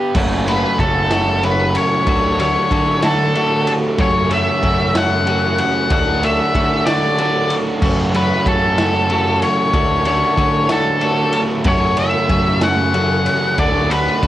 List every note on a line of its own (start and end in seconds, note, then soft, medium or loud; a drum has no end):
0.00 0.13 B3 medium
0.00 0.15 B3 medium
0.00 0.14 D4 medium
0.00 0.15 D4 medium
0.00 0.13 G4 medium
0.00 0.13 B4 medium
0.15 0.64 F#1 loud
0.15 0.46 F#2 medium
0.15 0.46 C#3 loud
0.15 0.47 F#3 loud
0.15 0.48 A3 loud
0.15 0.48 C#4 loud
0.15 0.49 F#4 loud
0.15 kick loud
0.15 crash loud
0.47 0.78 F#2 medium
0.47 0.79 C#3 medium
0.47 0.80 F#3 medium
0.47 0.80 A3 medium
0.47 0.81 C#4 medium
0.47 0.81 F#4 medium
0.47 0.79 B4 medium
0.47 ride medium
0.79 1.76 F#1 loud
0.79 1.10 F#2 medium
0.79 1.11 C#3 loud
0.79 1.12 F#3 medium
0.79 1.12 A3 medium
0.79 1.12 C#4 medium
0.79 1.12 F#4 medium
0.79 1.45 A4 medium
0.79 kick medium
0.79 ride medium
1.11 1.42 F#2 loud
1.11 1.43 C#3 loud
1.11 1.43 F#3 loud
1.11 1.44 A3 loud
1.11 1.44 C#4 loud
1.11 1.44 F#4 loud
1.11 snare loud
1.11 ride loud
1.43 2.05 F#2 medium
1.43 2.05 C#3 medium
1.43 2.07 F#3 loud
1.43 2.08 A3 loud
1.43 2.08 C#4 loud
1.43 2.09 F#4 loud
1.43 1.74 B4 medium
1.43 ride medium
1.75 2.39 C#5 medium
1.75 ride medium
2.07 2.55 D2 loud
2.07 2.37 D3 loud
2.07 2.39 F#3 loud
2.07 2.39 A3 loud
2.07 2.39 C#4 loud
2.07 2.39 D4 loud
2.07 2.39 F#4 loud
2.07 kick loud
2.07 ride loud
2.39 2.70 D3 medium
2.39 2.71 F#3 medium
2.39 2.72 A3 loud
2.39 2.72 C#4 medium
2.39 2.70 D4 loud
2.39 2.72 F#4 loud
2.39 3.05 C#5 loud
2.39 ride medium
2.71 3.68 D3 loud
2.71 3.02 D3 medium
2.71 3.04 F#3 medium
2.71 3.04 A3 medium
2.71 3.04 C#4 medium
2.71 3.03 D4 medium
2.71 3.04 F#4 loud
2.71 kick medium
2.71 ride medium
3.02 3.34 D3 loud
3.02 3.35 F#3 loud
3.02 3.36 A3 loud
3.02 3.35 C#4 loud
3.02 3.39 D4 loud
3.02 3.36 F#4 loud
3.02 3.71 A4 medium
3.02 snare loud
3.02 ride loud
3.35 3.97 D3 loud
3.35 3.98 F#3 loud
3.35 3.99 A3 loud
3.35 3.99 C#4 medium
3.35 3.99 F#4 loud
3.35 ride medium
3.67 ride medium
3.98 4.29 F#2 medium
3.98 4.47 F#2 medium
3.98 4.29 C#3 loud
3.98 4.30 F#3 loud
3.98 4.31 A3 loud
3.98 4.31 C#4 loud
3.98 4.31 F#4 loud
3.98 4.29 C#5 loud
3.98 kick loud
3.98 ride medium
4.30 4.62 F#2 medium
4.30 4.62 C#3 medium
4.30 4.63 F#3 medium
4.30 4.63 A3 medium
4.30 4.64 C#4 loud
4.30 4.64 F#4 medium
4.30 4.97 E5 loud
4.30 ride medium
4.63 4.94 F#2 medium
4.63 5.60 F#2 loud
4.63 4.94 C#3 loud
4.63 4.95 F#3 medium
4.63 4.95 A3 loud
4.63 4.95 C#4 medium
4.63 4.95 F#4 medium
4.63 kick medium
4.63 ride medium
4.95 5.26 F#2 loud
4.95 5.27 C#3 loud
4.95 5.28 F#3 loud
4.95 5.28 A3 loud
4.95 5.28 C#4 loud
4.95 5.28 F#4 loud
4.95 5.59 F#5 loud
4.95 snare loud
4.95 ride loud
5.27 5.89 F#2 medium
5.27 5.89 C#3 medium
5.27 5.91 F#3 loud
5.27 5.91 A3 loud
5.27 5.92 C#4 loud
5.27 5.92 F#4 loud
5.27 ride medium
5.58 5.91 F#5 medium
5.58 ride medium
5.90 6.39 D2 loud
5.90 6.22 D3 medium
5.90 6.22 F#3 loud
5.90 6.23 A3 loud
5.90 6.24 C#4 loud
5.90 6.22 D4 loud
5.90 6.24 F#4 loud
5.90 6.24 F#5 loud
5.90 kick loud
5.90 ride loud
6.23 6.54 D3 medium
6.23 6.55 F#3 medium
6.23 6.55 A3 medium
6.23 6.55 C#4 medium
6.23 6.55 D4 medium
6.23 6.56 F#4 loud
6.23 6.85 E5 loud
6.23 ride medium
6.55 7.52 D3 loud
6.55 6.86 D3 medium
6.55 6.86 F#3 medium
6.55 6.87 A3 medium
6.55 6.87 C#4 medium
6.55 6.86 D4 medium
6.55 6.88 F#4 medium
6.55 kick medium
6.55 ride medium
6.85 7.17 D3 loud
6.85 7.18 F#3 medium
6.85 7.18 A3 loud
6.85 7.19 C#4 loud
6.85 7.22 D4 loud
6.85 7.19 F#4 loud
6.85 7.54 D5 medium
6.85 snare loud
6.85 ride loud
7.18 7.80 D3 loud
7.18 7.82 F#3 medium
7.18 7.83 A3 medium
7.18 7.83 C#4 loud
7.18 7.83 F#4 loud
7.18 ride medium
7.50 ride medium
7.82 8.12 F#2 loud
7.82 8.31 F#2 loud
7.82 8.12 C#3 loud
7.82 8.14 F#3 medium
7.82 8.14 A3 loud
7.82 8.14 C#4 loud
7.82 8.15 F#4 loud
7.82 kick loud
7.82 crash loud
8.13 8.44 F#2 medium
8.13 8.45 C#3 medium
8.13 8.46 F#3 medium
8.13 8.47 A3 loud
8.13 8.47 C#4 medium
8.13 8.47 F#4 loud
8.13 8.45 B4 medium
8.13 ride medium
8.46 8.77 F#2 medium
8.46 9.43 F#2 loud
8.46 8.78 C#3 medium
8.46 8.79 F#3 loud
8.46 8.79 A3 medium
8.46 8.79 C#4 medium
8.46 8.80 F#4 medium
8.46 9.39 A4 medium
8.46 kick medium
8.46 ride medium
8.78 9.09 F#2 medium
8.78 9.09 C#3 loud
8.78 9.10 F#3 loud
8.78 9.11 A3 loud
8.78 9.11 C#4 loud
8.78 9.11 F#4 loud
8.78 snare loud
8.78 ride loud
9.10 9.72 F#2 medium
9.10 9.72 C#3 medium
9.10 9.73 F#3 loud
9.10 9.74 A3 loud
9.10 9.74 C#4 medium
9.10 9.74 F#4 loud
9.10 ride medium
9.42 10.05 C#5 medium
9.42 ride medium
9.73 10.22 D2 medium
9.73 10.04 D3 medium
9.73 10.06 F#3 loud
9.73 10.05 A3 loud
9.73 10.06 C#4 loud
9.73 10.06 D4 loud
9.73 10.06 F#4 loud
9.73 kick loud
9.73 ride loud
10.05 10.36 D3 medium
10.05 10.38 F#3 medium
10.05 10.37 A3 loud
10.05 10.37 C#4 medium
10.05 10.38 D4 loud
10.05 10.38 F#4 medium
10.05 10.66 C#5 loud
10.05 ride medium
10.37 10.68 D3 medium
10.37 11.35 D3 loud
10.37 10.70 F#3 medium
10.37 10.69 A3 medium
10.37 10.69 C#4 loud
10.37 10.70 D4 loud
10.37 10.70 F#4 loud
10.37 kick medium
10.37 ride medium
10.69 11.00 D3 loud
10.69 11.02 F#3 loud
10.69 11.01 A3 loud
10.69 11.01 C#4 loud
10.69 11.06 D4 loud
10.69 11.02 F#4 loud
10.69 11.39 A4 medium
10.69 snare loud
10.69 ride loud
11.01 11.64 D3 loud
11.01 11.66 F#3 loud
11.01 11.66 A3 loud
11.01 11.66 C#4 loud
11.01 11.66 F#4 loud
11.01 ride medium
11.32 ride medium
11.64 12.14 F#2 loud
11.64 11.96 F#2 medium
11.64 11.96 C#3 medium
11.64 11.97 F#3 loud
11.64 11.97 A3 loud
11.64 11.98 C#4 loud
11.64 11.98 F#4 loud
11.64 11.97 C#5 loud
11.64 kick loud
11.64 ride loud
11.97 12.28 F#2 medium
11.97 12.29 C#3 medium
11.97 12.30 F#3 loud
11.97 12.30 A3 loud
11.97 12.30 C#4 medium
11.97 12.31 F#4 loud
11.97 12.59 E5 loud
11.97 ride medium
12.29 12.61 F#2 medium
12.29 13.27 F#2 medium
12.29 12.61 C#3 loud
12.29 12.62 F#3 loud
12.29 12.63 A3 medium
12.29 12.63 C#4 loud
12.29 12.63 F#4 loud
12.29 kick medium
12.29 ride medium
12.61 12.93 F#2 loud
12.61 12.93 C#3 loud
12.61 12.94 F#3 loud
12.61 12.95 A3 loud
12.61 12.95 C#4 loud
12.61 12.95 F#4 loud
12.61 13.62 F#5 loud
12.61 snare loud
12.61 ride loud
12.94 13.56 F#2 medium
12.94 13.57 C#3 loud
12.94 13.58 F#3 loud
12.94 13.58 A3 loud
12.94 13.59 C#4 loud
12.94 13.59 F#4 loud
12.94 ride medium
13.26 ride medium
13.58 14.07 D2 loud
13.58 13.89 D3 loud
13.58 13.90 F#3 loud
13.58 13.89 A3 loud
13.58 13.90 C#4 medium
13.58 13.90 D4 loud
13.58 13.90 F#4 loud
13.58 13.92 D5 loud
13.58 kick loud
13.58 ride loud
13.90 14.21 D3 medium
13.90 14.21 F#3 medium
13.90 14.21 A3 medium
13.90 14.22 C#4 loud
13.90 14.22 D4 loud
13.90 14.22 F#4 loud
13.90 14.27 B4 loud
13.90 ride medium
14.22 14.27 D3 medium
14.22 14.27 F#3 medium
14.22 14.27 A3 medium
14.22 14.27 C#4 medium
14.22 14.27 D4 medium
14.22 14.27 F#4 medium
14.22 kick medium
14.22 ride medium